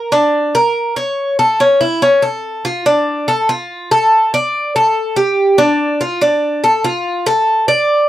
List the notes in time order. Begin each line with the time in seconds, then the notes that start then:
Already playing: A#4
0.12 D4
0.55 A#4
0.96 C#5
1.39 A4
1.60 C#4
1.81 E4
2.02 C#4
2.22 A4
2.65 F4
2.86 D4
3.28 A4
3.49 F4
3.91 A4
4.34 D5
4.76 A4
5.16 G4
5.58 D4
6.01 F4
6.21 D4
6.64 A4
6.84 F4
7.26 A4
7.68 D5